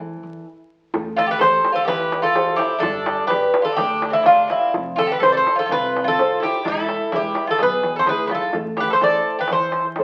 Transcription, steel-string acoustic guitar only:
0.00 E3
0.95 A3
1.41 G4 A4 C5
1.89 E3
2.35 G4 A4 C5
2.84 G3
3.31 G4 B4 D5
3.79 D3
4.26 G4 B4 D5
4.75 F3
5.21 F4 A4 C5
5.69 C3
6.18 F4 A4 C5
6.66 E3
7.13 G#3 E4 B4
7.60 B2
8.08 E4 G#4 B4
8.55 A3
9.01 E4 A4 C5
9.51 E3
9.98 E4 A4 C5

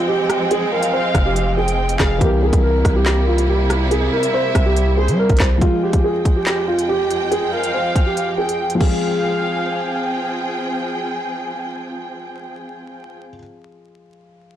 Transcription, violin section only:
0.72 F5
1.57 G5
2.00 F5
4.13 E5
4.98 C5
7.53 F5
8.38 G5
8.81 F5

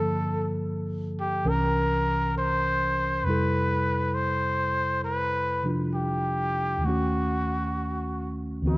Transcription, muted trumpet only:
Already playing: A4
1.20 G4
1.49 A#4
2.38 C5
3.24 B4
4.14 C5
5.04 B4
5.95 G4
6.85 F#4
8.69 E4

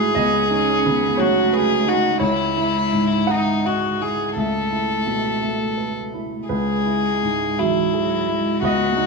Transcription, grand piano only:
Already playing: C#2 G#2 F#3 E4 G#4 E5
0.15 C#2 D#5
0.50 D#4
0.86 C#3
1.17 F#3 C#5
1.53 B4
1.87 D#4
2.20 C#2 C#5
2.57 E4
2.93 G#2
3.27 G#3 F#5
3.65 D#5
4.00 E4
4.36 C#2 E5
4.71 E4
5.06 B2
5.42 A3
5.77 B4
6.14 E4
6.49 C#2 B4
6.85 E4
7.23 G#2
7.58 F#3 E5
7.93 G#4
8.28 E4
8.62 C#2 D#5
8.96 D#4

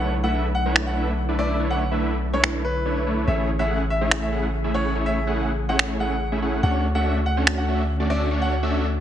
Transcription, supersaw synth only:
Already playing: A3 D4 E4 B4 C#5
0.24 A3 D4 E4 B4 E5
0.66 A3 D4 E4 B4 C#5
0.97 A3 D4 E4 B4 E5
1.29 A3 D4 E4 B4 D5
1.39 A3 D4 E4 B4 E5
1.60 A3 D4 E4 B4 C#5
1.91 A3 D4 E4 B4 E5
2.33 A3 D4 E4 B4 C#5
2.86 A3 D4 E4 B4 C#5
3.07 A3 D4 E4 B4 C#5
3.27 A3 C#4 E4 G#4 C#5
3.59 A3 C#4 E4 G#4 F#5
4.01 A3 C#4 E4 G#4 C#5
4.32 A3 C#4 E4 G#4 F#5
4.64 A3 C#4 E4 G#4 E5
4.74 A3 C#4 E4 G#4 F#5
4.95 A3 C#4 E4 G#4 C#5
5.27 A3 C#4 E4 G#4 F#5
5.69 A3 C#4 E4 G#4 C#5
6.00 A3 C#4 E4 G#4 F#5
6.32 A3 C#4 E4 G#4 E5
6.42 A3 C#4 E4 G#4 F#5
6.63 A3 C#4 D4 F#4 C#5
6.95 A3 C#4 D4 F#4 E5
7.37 A3 C#4 D4 F#4 C#5
7.68 A3 C#4 D4 F#4 E5
8.00 A3 C#4 D4 F#4 D5
8.10 A3 C#4 D4 F#4 E5
8.31 A3 C#4 D4 F#4 C#5
8.63 A3 C#4 D4 F#4 E5

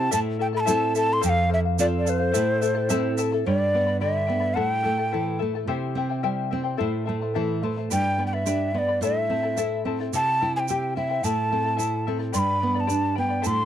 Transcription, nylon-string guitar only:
Already playing: C4 E4 G4
0.13 A2
0.68 C4 E4 A4
1.24 F2
1.79 C4 F4 A4
2.36 A2
2.90 C4 E4 A4
3.46 G2
3.75 B3
4.01 D3
4.29 B3
4.57 A2
4.86 A3
5.14 E3
5.42 A3
5.67 C3
5.95 C4
6.24 G3
6.53 C4
6.80 A2
7.09 A3
7.36 E3
7.63 A3
7.92 G2
8.18 B3
8.47 D4
8.74 B3
9.01 A2
9.30 C4
9.57 E4
9.85 C4
10.13 C3
10.42 E4
10.70 G4
10.97 E4
11.24 A2
11.53 C4
11.79 E4
12.08 C4
12.34 G2
12.63 B3
12.91 D4
13.18 B3
13.46 A2

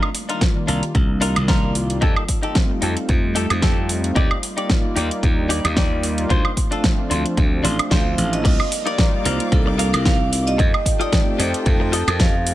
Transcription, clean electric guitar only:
0.29 D4 D#4 F4 A#4
0.55 muted clean electric guitar stroke
0.67 D4 D#4 F4 A#4
0.94 muted clean electric guitar stroke
1.21 D4 D#4 F4 A#4
1.48 D4 D#4 F4 A#4
2.01 D#4 G4 A4
2.43 D#4 G4 A4
2.70 muted clean electric guitar stroke
2.82 D#4 G4 A4
3.09 muted clean electric guitar stroke
3.35 D#4 G4 A4
3.62 D#4 G4 A4
4.15 D#4 G4 D5
4.57 D#4 G4 D5
4.84 muted clean electric guitar stroke
4.96 D#4 G4 D5
5.22 muted clean electric guitar stroke
5.49 D#4 G4 D5
5.76 D#4 G4 D5
6.29 D4 F4 C5
6.71 D4 F4 A4
6.98 muted clean electric guitar stroke
7.10 D4 F4 C5
7.37 muted clean electric guitar stroke
7.64 D4 F4 C5
7.90 D4 F4 C5
8.44 muted clean electric guitar stroke
8.59 muted clean electric guitar stroke
8.86 D#4 F4 A#4 D5
9.25 D#4 F4 A#4 F5
9.66 muted clean electric guitar stroke
9.78 D#4 F4 A#4 F5
10.58 muted clean electric guitar stroke
10.73 muted clean electric guitar stroke
11.00 F4 G4 A4 D#5
11.38 F4 G4 A4 D#5
11.80 muted clean electric guitar stroke
11.92 F4 G4 A4 D#5

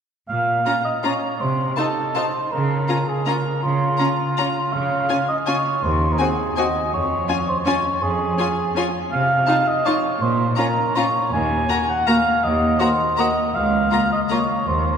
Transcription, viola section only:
0.66 C#4
1.04 C#4
1.78 D#4
2.16 D#4
2.89 C#4
3.27 C#4
4.00 C#4
4.38 C#4
5.10 C#4
5.47 C#4
6.19 C4
6.57 C4
7.29 C#4
7.66 C#4
8.38 C#4
8.77 C#4
9.48 D#4
9.86 D#4
10.58 C#4
10.96 C#4
11.69 A#3
12.08 A#3
12.82 A#3
13.19 A#3
13.93 A#3
14.31 A#3

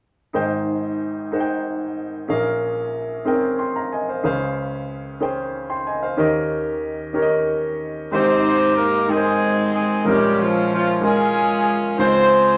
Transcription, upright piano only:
0.33 G#1 G#2 D#4 G#4 C5 G5
1.31 D#4 G#4 C5 F#5
1.40 G5
2.28 A#1 A#2 C#4 G#4 A#4 F5
3.25 C4 G#4 A#4 G5
3.32 C#4
3.59 G5 C6
3.76 F5 A#5
3.92 D#5 G#5
4.09 C5 F5
4.23 C#2 C#3 C#4 G#4 C5 F5
5.20 C#4 G#4 C5 G5
5.70 G5 C6
5.87 D#5 G#5
6.03 C5 F5
6.17 D#2 D#3 C#4 G4 A#4 D#5
7.13 C#4 G4 A#4 C#5
7.22 D#5
8.11 G#1 G#2 G#3 D#4 G4 C5
9.08 G#3 D#4 A#4 G5
9.17 C5
10.04 A#1 A#2 G#3 C4 F4 A#4
10.12 C#4
11.00 G#3 C#4 F4 A#4
11.98 C#2 C#3 G#3 C#4 F4 C5

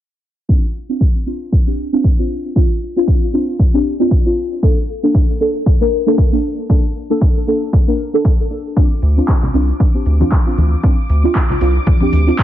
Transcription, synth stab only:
0.49 C4 D4 F4
0.89 C4 D4 F4
1.26 C4 D4 F4
1.67 C4 D4 G4
1.93 C4 D4 F4
2.18 C4 D4 F4
2.56 C4 D4 F4
2.96 C4 D4 F4
3.33 C4 D4 F4
3.74 C4 D4 G4
3.99 C4 D4 F4
4.25 C4 D4 F4
4.62 A#3 D4 A4
5.03 A#3 D4 A4
5.40 A#3 D4 A4
5.80 A#3 D4 A#4
6.06 A#3 D4 A4
6.32 A#3 D4 A4
6.69 A#3 D4 A4
7.10 A#3 D4 A4
7.47 A#3 D4 A4
7.87 A#3 D4 A#4
8.13 A#3 D4 A4
8.50 A#3 D4 A4
8.76 C4 D4 F4
9.17 C4 D4 F4
9.54 C4 D4 F4
9.94 C4 D4 G4
10.20 C4 D4 F4
10.46 C4 D4 F4
10.83 C4 D4 F4
11.23 C4 D4 F4
11.61 C4 D4 F4
12.01 C4 D4 G4
12.27 C4 D4 F4

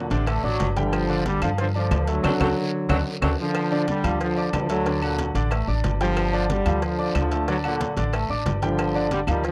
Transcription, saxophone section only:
0.11 C3
0.28 D3
0.44 F#3
2.24 C3 D3 F#3
2.41 C3 D3 F#3
2.89 C3 D3 F#3
3.22 C3 D3 F#3

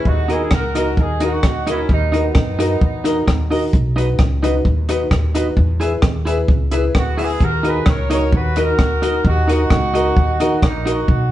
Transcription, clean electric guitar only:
0.28 D#4 F#4 A#4 D#5
0.51 muted clean electric guitar stroke
0.75 D#4 F#4 A#4 D#5
1.20 D#4 F#4 A#4 D#5
1.43 muted clean electric guitar stroke
1.66 D#4 F#4 A#4 D#5
2.12 D#4 F#4 A#4 D#5
2.34 muted clean electric guitar stroke
2.59 D#4 F#4 A#4 D#5
3.04 D#4 F#4 A#4 D#5
3.26 muted clean electric guitar stroke
3.51 D#4 F#4 A#4 D#5
3.96 D#4 F#4 B4 D#5
4.19 muted clean electric guitar stroke
4.43 D#4 F#4 B4 D#5
4.89 D#4 F#4 B4 D#5
5.11 muted clean electric guitar stroke
5.35 D#4 F#4 B4 D#5
5.80 E4 G#4 B4 E5
6.02 muted clean electric guitar stroke
6.25 E4 G#4 B4 E5
6.71 E4 G#4 B4 E5
7.17 E4 G#4 B4 E5
7.63 D#4 F#4 A#4 D#5
7.86 muted clean electric guitar stroke
8.10 D#4 F#4 A#4 D#5
8.57 D#4 F#4 A#4 D#5
8.78 muted clean electric guitar stroke
9.02 D#4 F#4 A#4 D#5
9.47 D#4 F#4 A#4 D#5
9.70 muted clean electric guitar stroke
9.94 D#4 F#4 A#4 D#5
10.40 D#4 F#4 A#4 D#5
10.86 D#4 F#4 A#4 D#5

